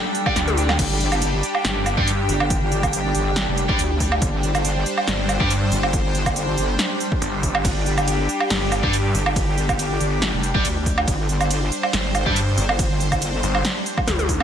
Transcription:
0.00 14.43 G3 medium
0.00 14.43 D4 medium
0.00 0.78 A4 loud
0.00 14.43 G5 medium
0.15 closed hi-hat medium
0.26 0.37 G3 medium
0.26 0.37 D4 medium
0.26 0.37 G4 loud
0.26 kick loud
0.26 low woodblock medium
0.36 0.77 D2 loud
0.36 snare medium
0.36 closed hi-hat medium
0.48 closed hi-hat soft
0.48 high tom medium
0.57 open hi-hat loud
0.69 snare medium
0.69 low woodblock medium
0.79 1.42 G1 loud
0.79 4.21 G4 loud
0.79 kick loud
0.79 closed hi-hat medium
0.79 crash medium
1.00 closed hi-hat medium
1.12 closed hi-hat soft
1.12 low woodblock medium
1.22 closed hi-hat medium
1.43 closed hi-hat medium
1.55 low woodblock medium
1.65 1.96 G1 loud
1.65 snare loud
1.65 closed hi-hat medium
1.86 closed hi-hat medium
1.86 low woodblock medium
1.97 2.27 G2 loud
1.97 2.09 G3 medium
1.97 2.09 D4 medium
1.97 2.09 G4 loud
1.97 kick loud
2.07 closed hi-hat medium
2.29 3.13 G1 medium
2.29 open hi-hat medium
2.40 low woodblock medium
2.50 kick loud
2.50 closed hi-hat medium
2.72 closed hi-hat medium
2.83 kick medium
2.83 closed hi-hat soft
2.83 low woodblock medium
2.93 closed hi-hat medium
3.15 3.46 G1 loud
3.15 closed hi-hat medium
3.36 snare loud
3.36 closed hi-hat medium
3.48 3.67 F1 medium
3.57 closed hi-hat medium
3.69 3.77 A#1 loud
3.69 3.80 G3 medium
3.69 3.80 D4 medium
3.69 3.80 G4 loud
3.69 kick loud
3.79 4.20 D2 medium
3.79 closed hi-hat medium
4.00 kick medium
4.00 open hi-hat loud
4.12 low woodblock medium
4.22 4.85 G1 loud
4.22 7.63 C5 medium
4.22 kick loud
4.22 closed hi-hat medium
4.43 closed hi-hat medium
4.55 closed hi-hat soft
4.55 low woodblock medium
4.65 closed hi-hat medium
4.86 closed hi-hat medium
4.98 low woodblock medium
5.07 5.39 G1 loud
5.07 snare loud
5.07 closed hi-hat medium
5.29 closed hi-hat medium
5.29 low woodblock medium
5.40 5.70 G2 medium
5.40 5.51 G3 medium
5.40 5.51 D4 medium
5.40 5.51 G4 loud
5.40 kick loud
5.50 closed hi-hat medium
5.72 6.56 G1 medium
5.72 open hi-hat medium
5.83 low woodblock medium
5.93 kick loud
5.93 closed hi-hat medium
6.15 closed hi-hat medium
6.26 kick medium
6.26 closed hi-hat soft
6.26 low woodblock medium
6.36 closed hi-hat medium
6.57 6.77 G1 loud
6.57 closed hi-hat medium
6.79 snare loud
6.79 closed hi-hat medium
7.00 closed hi-hat medium
7.12 kick loud
7.22 7.63 G1 medium
7.22 closed hi-hat medium
7.43 kick medium
7.43 open hi-hat medium
7.55 low woodblock medium
7.65 8.27 G1 loud
7.65 11.06 G4 loud
7.65 kick loud
7.65 closed hi-hat medium
7.65 ride medium
7.86 closed hi-hat soft
7.98 closed hi-hat soft
7.98 low woodblock medium
8.08 closed hi-hat medium
8.08 ride soft
8.29 closed hi-hat medium
8.40 low woodblock medium
8.50 8.81 G1 loud
8.50 snare loud
8.50 closed hi-hat medium
8.50 ride medium
8.72 closed hi-hat medium
8.72 low woodblock medium
8.83 9.13 G2 medium
8.83 8.94 G3 medium
8.83 8.94 D4 medium
8.83 8.94 G4 loud
8.83 kick loud
8.93 closed hi-hat medium
8.93 ride soft
9.15 9.99 G1 loud
9.15 open hi-hat medium
9.26 low woodblock medium
9.36 kick loud
9.36 closed hi-hat medium
9.36 ride medium
9.58 closed hi-hat soft
9.69 kick medium
9.69 closed hi-hat soft
9.69 low woodblock medium
9.79 closed hi-hat medium
9.79 ride soft
10.00 10.31 G1 loud
10.00 closed hi-hat medium
10.22 snare loud
10.22 closed hi-hat medium
10.22 ride medium
10.33 10.53 F1 loud
10.43 closed hi-hat medium
10.55 10.63 A#1 loud
10.55 10.66 G3 loud
10.55 10.66 D4 medium
10.55 10.66 G4 loud
10.55 kick loud
10.65 11.06 D2 loud
10.65 closed hi-hat medium
10.65 ride soft
10.86 kick medium
10.86 open hi-hat loud
10.98 low woodblock medium
11.07 11.70 G1 loud
11.07 14.43 C5 loud
11.07 kick loud
11.07 closed hi-hat medium
11.07 ride medium
11.29 closed hi-hat medium
11.41 closed hi-hat soft
11.41 low woodblock medium
11.51 closed hi-hat medium
11.51 ride medium
11.72 closed hi-hat medium
11.83 low woodblock medium
11.93 12.24 G1 loud
11.93 snare loud
11.93 closed hi-hat medium
11.93 ride medium
12.15 closed hi-hat medium
12.15 low woodblock medium
12.26 12.56 G2 loud
12.26 12.37 G3 medium
12.26 12.37 D4 medium
12.26 12.37 G4 loud
12.26 kick loud
12.36 closed hi-hat medium
12.36 ride soft
12.57 13.42 G1 medium
12.57 open hi-hat loud
12.69 low woodblock medium
12.79 kick loud
12.79 closed hi-hat medium
12.79 ride medium
13.00 closed hi-hat medium
13.12 kick medium
13.12 closed hi-hat soft
13.12 low woodblock medium
13.22 closed hi-hat medium
13.22 ride soft
13.43 13.63 G1 loud
13.43 closed hi-hat medium
13.55 low woodblock medium
13.65 snare loud
13.65 closed hi-hat medium
13.65 ride medium
13.86 closed hi-hat medium
13.98 kick loud
13.98 low woodblock medium
14.07 14.43 D2 medium
14.07 snare medium
14.07 closed hi-hat medium
14.07 high tom medium
14.07 ride soft
14.19 closed hi-hat soft
14.19 high tom medium
14.29 kick medium
14.29 open hi-hat loud

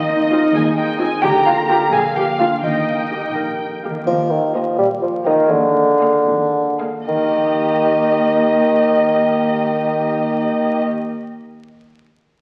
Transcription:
0.00 0.40 D#2 medium
0.00 1.24 D#3 medium
0.00 0.98 D#4 medium
0.00 0.98 D#4 soft
0.00 0.50 D#5 medium
0.00 0.95 D#5 medium
0.00 0.98 D#5 medium
0.08 0.76 C4 soft
0.30 0.48 C4 medium
0.30 0.48 F4 medium
0.30 1.68 F4 soft
0.54 1.08 D#2 medium
0.54 1.25 G#4 medium
0.54 0.62 G#5 medium
0.77 1.25 C4 medium
0.77 1.00 G5 medium
0.98 1.16 C4 medium
0.98 1.24 D#4 medium
0.98 1.16 F4 medium
0.98 1.22 G#5 medium
1.22 1.78 D2 medium
1.22 1.94 D3 medium
1.22 1.31 G4 medium
1.22 1.44 G5 medium
1.22 1.91 A#5 medium
1.46 2.15 A#3 medium
1.46 1.54 F4 medium
1.46 1.54 F5 medium
1.46 1.68 F5 soft
1.69 1.86 A#3 medium
1.69 1.86 F4 medium
1.69 2.39 F4 soft
1.69 1.92 G4 medium
1.69 1.91 G5 medium
1.69 1.77 G5 medium
1.92 2.48 A#1 medium
1.92 2.65 A#2 medium
1.92 2.00 G#4 medium
1.92 2.63 F5 medium
1.92 2.00 G#5 medium
1.92 2.15 G#5 medium
2.15 3.82 A#3 soft
2.15 2.24 G4 medium
2.15 2.23 G5 medium
2.15 2.38 G5 medium
2.39 2.57 A#3 soft
2.39 2.65 D4 soft
2.39 2.57 F4 medium
2.39 2.47 F4 medium
2.39 2.65 F4 soft
2.39 2.47 F5 medium
2.39 2.62 F5 soft
2.63 3.20 D#2 soft
2.63 3.88 D#3 soft
2.63 3.33 D#4 soft
2.63 3.33 D#5 soft
2.63 3.31 D#5 soft
2.63 3.69 G5 soft
2.88 3.58 D#4 soft
3.11 3.29 A#3 soft
3.11 4.01 G4 soft
3.11 3.29 G4 soft
3.34 3.92 A#1 soft
3.34 7.25 A#4 soft
3.59 3.97 D#4 soft
3.83 4.00 A#3 soft
3.83 3.92 A#3 soft
3.83 4.00 G4 soft
3.89 5.31 D#3 soft
3.93 5.36 A#3 soft
3.98 5.48 D#4 soft
4.02 5.50 G4 soft
4.07 4.63 D#2 medium
4.07 4.64 D#2 medium
4.07 4.32 F3 medium
4.07 triangle soft
4.30 4.55 D#3 medium
4.54 4.78 F3 medium
4.54 4.72 A#3 soft
4.54 4.72 G4 soft
4.54 4.72 D#5 soft
4.78 5.35 A#1 medium
4.78 5.35 A#2 soft
4.78 4.89 G3 medium
5.02 5.25 F3 medium
5.26 5.52 D#3 medium
5.26 5.44 A#3 soft
5.26 5.44 G4 soft
5.26 5.45 D#5 soft
5.33 7.01 D#3 soft
5.37 7.14 A#3 soft
5.41 7.06 F4 soft
5.46 7.08 G#4 soft
5.50 6.10 D#2 medium
5.50 6.11 D#2 medium
5.50 6.80 D3 medium
6.00 6.19 A#3 medium
6.00 6.20 G#4 soft
6.00 6.20 F5 soft
6.26 6.92 D#2 medium
6.81 7.02 A#3 soft
6.81 7.01 G#4 soft
6.81 7.01 F5 soft
7.08 10.83 D#2 soft
7.08 10.84 D#2 soft
7.08 10.83 D#3 soft
7.08 10.98 D#3 soft
7.08 10.83 A#3 soft
7.08 10.83 G4 soft
7.08 10.83 D#5 soft
7.16 10.91 A#3 soft
7.23 10.98 D#4 soft
7.29 11.04 G4 soft
7.36 11.11 D#5 soft

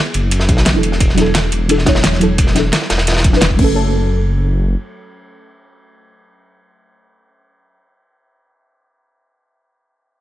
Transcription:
0.00 0.70 F#3 medium
0.00 0.72 B3 medium
0.00 0.73 E4 medium
0.00 0.74 G#4 medium
0.06 ride soft
0.14 0.50 F#1 medium
0.14 closed hi-hat medium
0.14 ride medium
0.31 closed hi-hat medium
0.31 ride medium
0.40 snare soft
0.49 0.65 B1 loud
0.49 kick loud
0.49 closed hi-hat medium
0.49 ride medium
0.57 snare medium
0.66 0.76 B1 medium
0.66 snare loud
0.66 closed hi-hat medium
0.66 ride medium
0.71 0.99 E1 medium
0.71 1.13 F#3 medium
0.71 1.15 D4 medium
0.71 ride soft
0.76 1.16 E4 medium
0.76 1.17 A4 medium
0.83 closed hi-hat medium
0.83 ride medium
0.92 snare soft
1.00 1.51 E1 loud
1.00 kick loud
1.00 closed hi-hat medium
1.00 ride medium
1.09 snare soft
1.14 1.66 F#3 medium
1.14 1.67 D4 medium
1.14 snare soft
1.14 closed hi-hat medium
1.14 ride medium
1.19 1.68 E4 medium
1.19 1.69 A4 loud
1.26 ride soft
1.35 snare loud
1.35 closed hi-hat medium
1.35 ride medium
1.44 ride soft
1.52 2.71 E1 medium
1.52 closed hi-hat medium
1.52 ride medium
1.68 1.74 F#3 medium
1.68 1.75 D4 medium
1.68 1.75 E4 medium
1.68 1.76 A4 medium
1.68 closed hi-hat medium
1.68 ride medium
1.78 snare soft
1.85 2.18 F#3 medium
1.85 2.19 D4 medium
1.85 2.19 E4 medium
1.85 2.20 C#5 loud
1.85 kick loud
1.85 snare loud
1.85 closed hi-hat medium
1.85 ride medium
1.95 snare medium
1.95 ride medium
2.04 snare loud
2.04 closed hi-hat medium
2.04 ride medium
2.13 snare soft
2.20 2.26 F#3 medium
2.20 2.26 D4 medium
2.20 2.27 E4 medium
2.20 2.27 A4 loud
2.20 closed hi-hat medium
2.20 ride medium
2.38 kick loud
2.38 closed hi-hat medium
2.38 ride medium
2.47 snare soft
2.52 3.29 F#3 medium
2.52 3.31 D4 medium
2.52 snare medium
2.52 closed hi-hat medium
2.52 ride medium
2.57 3.32 E4 medium
2.57 3.33 A4 medium
2.73 snare loud
2.73 closed hi-hat medium
2.73 ride medium
2.82 snare medium
2.90 3.07 E1 medium
2.90 snare loud
2.90 closed hi-hat medium
2.90 ride medium
2.98 snare loud
2.98 ride medium
3.07 3.58 E1 medium
3.07 snare medium
3.07 closed hi-hat medium
3.07 ride medium
3.11 snare medium
3.11 ride medium
3.16 snare medium
3.16 ride medium
3.20 snare medium
3.20 ride medium
3.24 kick loud
3.24 closed hi-hat medium
3.24 ride medium
3.30 3.53 F#3 medium
3.30 3.58 D4 medium
3.30 snare medium
3.34 3.60 E4 medium
3.34 3.61 B4 medium
3.41 snare loud
3.41 closed hi-hat loud
3.41 ride medium
3.50 7.78 F#3 medium
3.50 kick medium
3.50 ride soft
3.57 4.76 F#1 medium
3.57 7.82 A3 medium
3.57 7.85 C#4 medium
3.57 kick loud
3.57 crash medium
3.64 7.88 A4 medium

